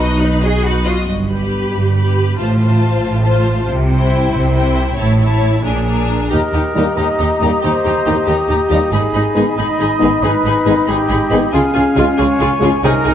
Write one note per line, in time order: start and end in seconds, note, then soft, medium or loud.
0.00 0.86 B1 soft
0.00 0.37 D#4 soft
0.00 0.20 F#4 soft
0.00 0.42 B4 medium
0.00 0.21 D#5 soft
0.00 0.21 D#6 soft
0.19 0.42 D#4 soft
0.19 0.43 B4 soft
0.19 0.42 F#6 soft
0.42 0.65 F#4 soft
0.42 0.63 G#4 medium
0.42 0.65 D#5 soft
0.42 0.64 D#6 soft
0.64 0.85 D#4 soft
0.64 0.86 F#4 soft
0.64 0.85 B4 soft
0.64 0.85 F#6 soft
0.85 1.08 F4 soft
0.85 1.09 F#4 soft
0.85 1.09 D#5 soft
0.85 1.08 D#6 soft
1.08 1.66 G1 soft
1.08 1.66 G2 soft
1.28 1.94 G4 soft
1.28 1.95 B4 soft
1.28 1.93 B5 soft
1.73 2.30 G1 soft
1.73 2.31 G2 soft
1.95 2.38 G4 soft
1.95 2.38 B4 soft
1.95 2.37 B5 soft
2.38 2.95 A1 soft
2.38 2.95 A2 soft
2.38 2.58 F4 soft
2.38 2.60 C5 soft
2.38 2.58 A5 soft
2.59 3.23 F4 soft
2.59 3.24 C5 soft
2.59 3.22 A5 soft
3.03 3.60 A1 soft
3.03 3.60 A2 soft
3.23 3.66 F4 soft
3.23 3.67 C5 soft
3.23 3.66 A5 soft
3.67 4.25 C2 medium
3.67 4.25 C3 medium
3.89 4.53 E4 soft
3.89 4.53 C5 soft
3.89 4.53 G5 soft
4.33 4.90 C2 medium
4.33 4.90 C3 medium
4.54 4.97 E4 soft
4.54 4.97 C5 soft
4.54 4.97 G5 soft
4.96 5.56 A1 medium
4.96 5.56 A2 medium
4.96 5.18 E4 soft
4.96 5.19 C#5 soft
4.96 5.19 A5 soft
5.20 5.63 E4 soft
5.20 5.64 C#5 soft
5.20 5.64 A5 soft
5.63 6.23 A#1 soft
5.63 6.23 A#2 soft
5.63 5.85 D4 soft
5.63 6.26 G#4 medium
5.63 5.86 A#4 soft
5.63 5.84 G#5 soft
5.85 6.30 D4 soft
5.85 6.30 A#4 soft
5.85 6.29 G#5 soft
6.30 6.39 D#2 medium
6.30 6.40 D#2 soft
6.30 6.39 D#4 soft
6.30 8.93 G4 soft
6.30 6.39 G4 soft
6.30 6.99 A#4 medium
6.30 8.89 D#5 soft
6.30 6.38 A#5 soft
6.30 8.89 A#5 soft
6.53 6.61 D#2 soft
6.53 6.62 D#2 soft
6.53 6.62 D#4 soft
6.53 6.62 G4 soft
6.53 6.61 A#5 soft
6.75 6.83 D#2 soft
6.75 6.84 D#2 soft
6.75 6.83 D#3 soft
6.75 6.83 G3 soft
6.75 6.84 A#3 soft
6.75 6.83 D#4 soft
6.75 6.85 D#4 soft
6.75 6.86 G4 soft
6.75 6.84 A#5 soft
6.97 7.05 D#2 soft
6.97 7.06 D#2 soft
6.97 7.06 D#4 soft
6.97 7.06 G4 soft
6.97 7.62 D#5 medium
6.97 7.06 A#5 soft
7.19 7.28 D#2 soft
7.19 7.27 D#4 soft
7.19 7.29 G4 soft
7.19 7.27 A#5 soft
7.41 7.49 D#2 soft
7.41 7.50 D#2 soft
7.41 7.49 D#3 soft
7.41 7.49 G3 soft
7.41 7.49 A#3 soft
7.41 7.49 D#4 soft
7.41 7.51 G4 soft
7.41 7.50 A#5 soft
7.62 7.71 D#2 soft
7.62 7.72 D#4 soft
7.62 7.70 G4 soft
7.62 8.29 C5 medium
7.62 7.71 A#5 soft
7.85 7.93 D#2 soft
7.85 7.94 D#2 soft
7.85 7.94 D#4 soft
7.85 7.93 G4 soft
7.85 7.95 A#5 soft
8.05 8.14 D#2 soft
8.05 8.15 D#2 soft
8.05 8.13 D#3 soft
8.05 8.13 G3 soft
8.05 8.15 A#3 soft
8.05 8.15 D#4 soft
8.05 8.16 D#4 soft
8.05 8.14 G4 soft
8.05 8.15 A#5 soft
8.27 8.35 D#2 medium
8.27 8.36 D#2 soft
8.27 8.36 D#4 soft
8.27 8.35 G4 soft
8.27 8.92 G4 medium
8.27 8.37 A#5 soft
8.48 8.57 D#2 soft
8.48 8.58 D#2 soft
8.48 8.57 D#4 soft
8.48 8.56 G4 soft
8.48 8.59 A#5 soft
8.70 8.78 D#2 soft
8.70 8.79 D#2 soft
8.70 8.78 D#3 soft
8.70 8.78 G3 soft
8.70 8.78 A#3 soft
8.70 8.78 D#4 soft
8.70 8.79 D#4 soft
8.70 8.78 G4 soft
8.70 8.80 A#5 soft
8.91 8.99 G#1 medium
8.91 9.01 G#2 medium
8.91 11.52 D#4 soft
8.91 9.01 D#4 soft
8.91 9.00 G#4 soft
8.91 9.57 G#4 medium
8.91 11.49 D#5 soft
8.91 9.02 B5 soft
8.91 11.50 B5 soft
9.13 9.21 G#1 soft
9.13 9.22 G#2 soft
9.13 9.23 D#4 soft
9.13 9.23 G#4 soft
9.13 9.22 B5 soft
9.35 9.44 G#1 soft
9.35 9.44 G#2 soft
9.35 9.44 D#3 soft
9.35 9.44 G#3 soft
9.35 9.43 B3 soft
9.35 9.43 D#4 soft
9.35 9.44 D#4 soft
9.35 9.44 G#4 soft
9.35 9.45 B5 soft
9.57 9.65 G#1 soft
9.57 9.66 G#2 soft
9.57 9.66 D#4 soft
9.57 9.66 G#4 soft
9.57 10.25 D#5 medium
9.57 9.67 B5 soft
9.79 9.87 G#1 soft
9.79 9.88 G#2 soft
9.79 9.88 D#4 soft
9.79 9.88 G#4 soft
9.79 9.89 B5 soft
9.99 10.09 G#1 medium
9.99 10.09 G#2 soft
9.99 10.09 D#3 medium
9.99 10.08 G#3 medium
9.99 10.08 B3 soft
9.99 10.08 D#4 soft
9.99 10.09 D#4 soft
9.99 10.11 G#4 soft
9.99 10.09 B5 soft
10.23 10.31 G#1 medium
10.23 10.31 G#2 medium
10.23 10.31 D#4 soft
10.23 10.31 G#4 medium
10.23 10.88 B4 medium
10.23 10.32 B5 soft
10.45 10.53 G#1 soft
10.45 10.53 G#2 soft
10.45 10.53 D#4 soft
10.45 10.55 G#4 soft
10.45 10.54 B5 soft
10.65 10.75 G#1 soft
10.65 10.74 G#2 medium
10.65 10.73 D#3 soft
10.65 10.74 G#3 soft
10.65 10.74 B3 medium
10.65 10.74 D#4 medium
10.65 10.75 D#4 soft
10.65 10.74 G#4 soft
10.65 10.74 B5 soft
10.87 10.96 G#1 medium
10.87 10.96 G#2 medium
10.87 10.97 D#4 soft
10.87 11.55 G4 medium
10.87 10.96 G#4 medium
10.87 10.95 B5 soft
11.09 11.18 G#1 medium
11.09 11.18 G#2 medium
11.09 11.19 D#4 soft
11.09 11.17 G#4 soft
11.09 11.18 B5 medium
11.30 11.39 G#1 medium
11.30 11.38 G#2 medium
11.30 11.38 D#3 medium
11.30 11.38 G#3 medium
11.30 11.39 B3 medium
11.30 11.39 D#4 medium
11.30 11.40 D#4 soft
11.30 11.39 G#4 soft
11.30 11.38 B5 medium
11.52 11.61 C#2 medium
11.52 11.61 C#3 medium
11.52 12.54 C#4 medium
11.52 11.61 F4 medium
11.52 11.96 G#4 medium
11.52 11.62 G#4 medium
11.52 12.54 F5 medium
11.52 11.60 G#5 soft
11.52 13.14 G#5 medium
11.74 11.84 C#2 soft
11.74 11.83 C#3 medium
11.74 11.83 F4 medium
11.74 11.83 G#4 medium
11.74 11.82 G#5 soft
11.95 12.05 C#2 medium
11.95 12.04 C#3 medium
11.95 12.03 G#3 medium
11.95 12.04 C#4 medium
11.95 12.04 F4 medium
11.95 12.06 F4 medium
11.95 12.05 G#4 medium
11.95 12.03 G#5 soft
12.18 12.27 C#2 medium
12.18 12.26 C#3 medium
12.18 12.27 F4 medium
12.18 12.27 G#4 medium
12.18 12.80 C#5 medium
12.18 12.26 G#5 medium
12.40 12.49 C#2 medium
12.40 12.48 C#3 medium
12.40 12.49 F4 medium
12.40 12.48 G#4 medium
12.40 12.49 G#5 medium
12.59 12.70 C#2 medium
12.59 12.68 C#3 medium
12.59 12.70 C#3 medium
12.59 12.68 G#3 medium
12.59 12.69 C#4 medium
12.59 12.69 F4 medium
12.59 12.70 G#4 soft
12.59 12.71 G#5 medium
12.64 12.72 F4 medium
12.83 12.91 C2 medium
12.83 12.92 C3 medium
12.83 13.14 D#4 medium
12.83 12.92 D#4 medium
12.83 12.92 G#4 medium
12.83 13.14 A#4 medium
12.83 13.14 D#5 medium
12.83 12.91 G#5 medium
13.04 13.13 C2 medium
13.04 13.13 C3 medium
13.04 13.14 D#4 medium
13.04 13.12 G#4 medium
13.04 13.13 G#5 medium